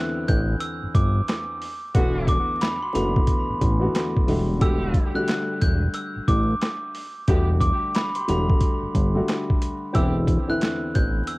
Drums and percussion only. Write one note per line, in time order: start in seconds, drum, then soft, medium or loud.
0.28 kick loud
0.28 closed hi-hat medium
0.60 closed hi-hat medium
0.95 kick loud
0.95 closed hi-hat medium
1.28 snare loud
1.28 clap medium
1.28 closed hi-hat medium
1.62 open hi-hat medium
1.95 kick loud
1.95 closed hi-hat medium
2.27 kick loud
2.27 closed hi-hat medium
2.61 snare loud
2.61 clap medium
2.61 closed hi-hat medium
2.95 closed hi-hat medium
3.16 kick loud
3.27 kick medium
3.27 closed hi-hat medium
3.61 kick medium
3.61 closed hi-hat medium
3.95 snare loud
3.95 clap medium
3.95 closed hi-hat medium
4.17 kick medium
4.28 open hi-hat medium
4.61 kick loud
4.61 closed hi-hat loud
4.94 kick loud
4.94 closed hi-hat medium
5.28 snare loud
5.28 clap medium
5.28 closed hi-hat medium
5.62 kick loud
5.62 closed hi-hat medium
5.94 closed hi-hat medium
6.28 kick loud
6.28 closed hi-hat medium
6.62 snare loud
6.62 clap loud
6.62 closed hi-hat medium
6.95 open hi-hat medium
7.28 kick loud
7.28 closed hi-hat medium
7.61 kick loud
7.61 closed hi-hat medium
7.95 snare loud
7.95 clap medium
7.95 closed hi-hat medium
8.15 closed hi-hat medium
8.28 closed hi-hat medium
8.50 kick loud
8.60 kick medium
8.60 closed hi-hat medium
8.95 kick medium
8.95 closed hi-hat medium
9.28 snare loud
9.28 clap medium
9.28 closed hi-hat medium
9.50 kick medium
9.62 closed hi-hat medium
9.95 kick loud
9.95 closed hi-hat medium
10.27 kick medium
10.27 closed hi-hat medium
10.61 snare loud
10.61 clap medium
10.61 closed hi-hat medium
10.95 kick medium
10.95 closed hi-hat medium
11.27 closed hi-hat medium